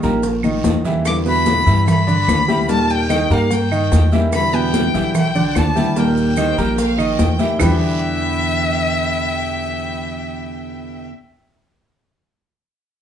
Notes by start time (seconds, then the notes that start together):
0.03 A#1 G3 A#3 D#4 G4 A#4 A#5, high bongo, high conga, short guiro, maracas
0.23 muted nylon-string guitar stroke, high bongo, high conga, long guiro, maracas
0.43 D#3 D#4 D#5, high conga, claves, maracas
0.64 E2, high bongo, low bongo, high conga, short guiro, maracas
0.85 E3 G3 A#3 D#4 E4 G4 E5, high bongo, low conga, short guiro, maracas
1.05 B2 D3 G3 B3 E4 D6, high bongo, high conga, long guiro, claves, maracas
1.26 B2 B3 B4 B5, high bongo, high conga, maracas
1.46 D3 G3 B3, high bongo, high conga, short guiro, maracas
1.66 G2 D3 E3 G3 B3 E4 E5, high bongo, high conga, short guiro, maracas
1.87 B5, muted nylon-string guitar stroke, high bongo, high conga, low conga, long guiro, claves, maracas
2.07 D3 D4 D5, high conga, low conga, maracas
2.28 D#2, high bongo, low bongo, high conga, short guiro, claves, maracas
2.48 D3 G3 B3 E4 G4 G5, high bongo, high conga, short guiro, maracas
2.68 A#2 D#3 G3 A#3 D#4 G4 A#4 A5, high bongo, high conga, long guiro, maracas
2.89 G5, high bongo, high conga, maracas
3.09 D#3 G3 A#3 D#4 G4 D#5, high bongo, high conga, short guiro, claves, maracas
3.30 G2 G3 A#3 D#4 G4 A#4 F5 A#5, high bongo, high conga, short guiro, maracas
3.51 G5, muted nylon-string guitar stroke, high bongo, high conga, long guiro, maracas
3.71 D#3 D#4 D#5, high conga, claves, maracas
3.92 E2, high bongo, low bongo, high conga, short guiro, maracas
4.12 E3 G3 A#3 D#4 E4 G4 E5, high bongo, high conga, short guiro, maracas
4.33 B2 D3 G3 B3 E4 B5, high bongo, high conga, long guiro, claves, maracas
4.53 B2 B3 B4 G5, high bongo, high conga, maracas
4.74 D3 G3 B3 E4, high bongo, high conga, short guiro, maracas
4.94 B1 D3 E3 G3 B3 E4 E5, high bongo, high conga, short guiro, maracas
5.15 G5, muted nylon-string guitar stroke, high bongo, high conga, low conga, long guiro, claves, maracas
5.35 D3 D4 D5, high conga, low conga, maracas
5.55 D#2 A5, high bongo, low bongo, high conga, short guiro, claves, maracas
5.75 D3 G3 B3 E4 G4 G5, high bongo, high conga, short guiro, maracas
5.96 A#2 D#3 G3 A#3 D#4 G4 A#4 G5, high bongo, high conga, long guiro, maracas
6.17 high bongo, high conga, maracas
6.36 D#3 G3 A#3 D#4 G4 C5 D#5, high bongo, high conga, short guiro, claves, maracas
6.57 A#1 G3 A#3 D#4 G4 A#4 A#5, high bongo, short guiro, maracas
6.78 F5, muted nylon-string guitar stroke, high bongo, high conga, long guiro, maracas
6.98 D#3 D#4 D#5, high conga, claves, maracas
7.19 E2 G5, high bongo, low bongo, high conga, short guiro, maracas
7.39 E3 G3 A#3 D#4 E4 G4 E5, high bongo, high conga, short guiro, maracas
7.59 E2 B2 D3 E3 G3 B3 D4 E4 G4 B4 E5 G5, low bongo, low conga, long guiro, claves, maracas